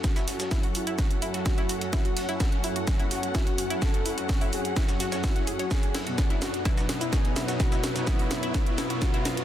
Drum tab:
HH |xxoxxooxxxoxxxox|xxoxxxoxxxoxxxox|xxoxxooxxxoxxxox|xxoxxxoxxxoxxxox|
SH |xxxxx-x-x-x-x-x-|x---x-x-x-x-x-x-|x-x-x-x-xxxxx-x-|x---x-x-xx-xx-xx|
SD |ooooo---o--ooo--|o-o-oo--o-o-o--o|oo--o---oooooo--|o-o-ooooooo-o-oo|
BD |o---o---o---o---|o---o---o---o---|o---o---o---o---|o---o---o---o---|

HH |xxoxxooxxxoxxxox|
SH |xxxxx-x-x-x-x-x-|
SD |ooooo-o-o-ooooo-|
BD |o---o---o---o---|